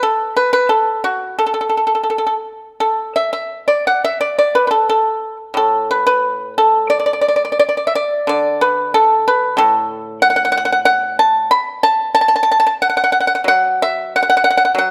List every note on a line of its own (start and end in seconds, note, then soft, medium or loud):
0.03 0.34 A4 medium
0.37 0.52 B4 medium
0.53 0.68 B4 medium
0.69 1.01 A4 medium
1.04 1.36 F#4 medium
1.39 1.45 A4 medium
1.46 1.53 A4 soft
1.54 1.60 A4 soft
1.61 1.68 A4 soft
1.69 1.76 A4 soft
1.77 1.85 A4 soft
1.87 1.93 A4 soft
1.95 2.01 A4 soft
2.03 2.09 A4 soft
2.10 2.17 A4 soft
2.18 2.25 A4 soft
2.27 2.33 A4 soft
2.80 3.13 A4 medium
3.16 3.32 E5 medium
3.33 3.65 E5 medium
3.68 3.84 D5 medium
3.87 4.02 F#5 medium
4.04 4.20 E5 medium
4.21 4.36 D5 medium
4.39 4.54 D5 medium
4.55 4.66 B4 medium
4.67 4.87 A4 medium
4.67 4.70 B4 soft
4.89 5.36 A4 medium
5.54 7.58 A2 medium
5.54 5.88 A4 medium
5.91 6.05 B4 medium
6.07 6.53 B4 medium
6.58 6.88 A4 medium
6.90 6.97 D5 medium
6.99 7.05 D5 soft
7.06 7.12 D5 medium
7.13 7.20 D5 soft
7.21 7.27 D5 soft
7.28 7.35 D5 soft
7.36 7.43 D5 soft
7.45 7.51 D5 soft
7.52 7.58 D5 soft
7.59 7.61 D5 medium
7.69 7.76 D5 medium
7.77 7.84 D5 soft
7.87 7.94 E5 medium
7.95 8.26 D5 medium
8.27 10.22 D3 medium
8.27 8.59 D5 medium
8.61 8.92 B4 medium
8.94 9.25 A4 medium
9.28 9.57 B4 medium
9.57 11.49 A2 medium
9.57 10.18 A4 medium
10.22 10.29 F#5 medium
10.30 10.35 F#5 medium
10.36 10.43 F#5 medium
10.45 10.51 F#5 medium
10.52 10.56 F#5 medium
10.57 10.64 F#5 medium
10.65 10.71 F#5 medium
10.72 10.79 F#5 medium
10.85 11.16 F#5 loud
11.19 11.48 A5 medium
11.51 11.80 B5 loud
11.83 12.12 A5 loud
12.15 12.20 A5 medium
12.21 12.27 A5 medium
12.28 12.34 A5 medium
12.36 12.42 A5 medium
12.43 12.50 A5 medium
12.52 12.58 A5 medium
12.60 12.65 A5 medium
12.67 12.73 A5 medium
12.82 12.88 F#5 medium
12.90 12.95 F#5 medium
12.97 13.02 F#5 medium
13.04 13.10 F#5 medium
13.12 13.18 F#5 medium
13.20 13.26 F#5 medium
13.27 13.33 F#5 medium
13.35 13.41 F#5 medium
13.44 14.73 F#3 medium
13.44 13.79 F#5 medium
13.82 14.12 E5 medium
14.16 14.21 F#5 medium
14.23 14.28 F#5 medium
14.30 14.36 F#5 medium
14.37 14.43 F#5 medium
14.44 14.49 F#5 medium
14.50 14.56 F#5 medium
14.57 14.64 F#5 medium
14.65 14.72 F#5 medium
14.75 14.91 F#3 medium
14.75 14.91 F#5 medium